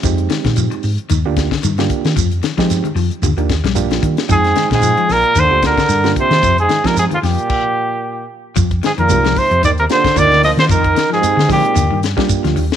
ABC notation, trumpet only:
X:1
M:4/4
L:1/16
Q:"Swing 16ths" 1/4=112
K:Fdor
V:1 name="Trumpet"
z16 | z16 | A3 A3 B2 c2 B4 c2- | c A2 B A F G8 z2 |
z2 A B3 c2 d B c2 d2 e c | B3 A3 G4 z6 |]